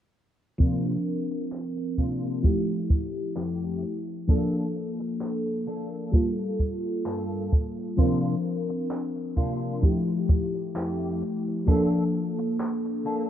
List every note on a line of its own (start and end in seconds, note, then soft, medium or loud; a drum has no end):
0.58 0.95 C3 loud
0.58 2.35 F3 medium
0.58 0.95 A#3 medium
0.58 2.36 C4 medium
0.58 2.36 D4 medium
0.58 0.95 D4 medium
0.58 0.96 F4 loud
0.58 2.37 A#4 medium
0.58 kick loud
0.58 closed hi-hat medium
0.85 closed hi-hat medium
1.06 closed hi-hat medium
1.31 muted clean electric guitar stroke medium
1.31 closed hi-hat medium
1.52 muted clean electric guitar stroke soft
1.52 clap loud
1.52 closed hi-hat medium
1.77 muted clean electric guitar stroke soft
1.77 closed hi-hat medium
1.98 2.44 C3 medium
1.98 2.44 A#3 medium
1.98 2.44 D4 medium
1.98 2.44 F4 medium
1.98 kick medium
1.98 closed hi-hat medium
2.24 closed hi-hat medium
2.43 4.20 F3 medium
2.43 4.20 A3 medium
2.43 4.21 E4 medium
2.43 4.21 G4 medium
2.43 kick loud
2.43 closed hi-hat medium
2.69 closed hi-hat medium
2.90 muted clean electric guitar stroke soft
2.90 kick loud
3.16 closed hi-hat soft
3.36 3.83 F2 medium
3.36 3.83 A3 medium
3.36 3.83 E4 medium
3.36 3.83 G4 medium
3.36 clap loud
3.36 closed hi-hat loud
3.62 closed hi-hat medium
3.82 closed hi-hat medium
4.08 closed hi-hat medium
4.27 6.04 F3 medium
4.27 4.64 A#3 loud
4.27 6.05 A#3 medium
4.27 4.65 D4 medium
4.27 6.05 D4 medium
4.27 4.65 A4 loud
4.27 6.06 A4 medium
4.27 kick loud
4.27 closed hi-hat medium
4.54 closed hi-hat medium
4.75 closed hi-hat medium
5.00 muted clean electric guitar stroke medium
5.00 closed hi-hat soft
5.21 muted clean electric guitar stroke soft
5.21 clap loud
5.21 closed hi-hat medium
5.46 muted clean electric guitar stroke soft
5.46 closed hi-hat medium
5.67 6.13 A#3 medium
5.67 6.14 D4 medium
5.67 6.14 A4 medium
5.67 closed hi-hat medium
5.92 closed hi-hat medium
6.12 7.89 G3 medium
6.12 7.89 A#3 medium
6.12 7.90 F4 medium
6.12 7.90 A4 medium
6.12 kick loud
6.12 closed hi-hat medium
6.38 closed hi-hat medium
6.59 muted clean electric guitar stroke soft
6.59 kick medium
6.85 closed hi-hat soft
7.05 7.52 G2 medium
7.05 7.52 A#3 medium
7.05 7.52 F4 medium
7.05 7.52 A4 medium
7.05 clap loud
7.05 closed hi-hat loud
7.31 closed hi-hat medium
7.52 kick loud
7.52 closed hi-hat medium
7.78 closed hi-hat medium
7.97 8.34 C3 loud
7.97 9.74 F3 medium
7.97 8.34 A#3 medium
7.97 9.74 C4 medium
7.97 9.75 D4 medium
7.97 8.34 D4 medium
7.97 8.34 F4 loud
7.97 9.75 A#4 medium
7.97 kick loud
7.97 closed hi-hat medium
8.24 closed hi-hat medium
8.45 closed hi-hat medium
8.69 muted clean electric guitar stroke medium
8.69 closed hi-hat medium
8.90 muted clean electric guitar stroke soft
8.90 clap loud
8.90 closed hi-hat medium
9.15 muted clean electric guitar stroke soft
9.15 closed hi-hat medium
9.36 9.83 C3 medium
9.36 9.83 A#3 medium
9.36 9.83 D4 medium
9.36 9.83 F4 loud
9.36 kick medium
9.36 closed hi-hat medium
9.62 closed hi-hat medium
9.81 11.58 F3 medium
9.81 11.59 A3 medium
9.81 11.59 E4 medium
9.81 11.60 G4 medium
9.81 kick loud
9.81 closed hi-hat loud
10.09 closed hi-hat medium
10.29 muted clean electric guitar stroke soft
10.29 kick loud
10.54 closed hi-hat soft
10.75 11.21 F2 medium
10.75 11.21 A3 medium
10.75 11.21 E4 medium
10.75 11.21 G4 medium
10.75 clap loud
10.75 closed hi-hat medium
11.00 closed hi-hat medium
11.22 closed hi-hat medium
11.47 closed hi-hat medium
11.66 13.30 F3 medium
11.66 13.30 A#3 medium
11.66 12.03 A#3 loud
11.66 12.03 D4 medium
11.66 13.30 D4 medium
11.66 12.03 A4 loud
11.66 13.30 A4 medium
11.66 kick loud
11.66 closed hi-hat medium
11.93 closed hi-hat medium
12.14 closed hi-hat medium
12.39 muted clean electric guitar stroke medium
12.39 closed hi-hat medium
12.59 muted clean electric guitar stroke soft
12.59 clap loud
12.59 closed hi-hat medium
12.85 muted clean electric guitar stroke soft
12.85 closed hi-hat medium
13.05 13.30 A#3 medium
13.05 13.30 D4 medium
13.05 13.30 A4 medium
13.05 closed hi-hat medium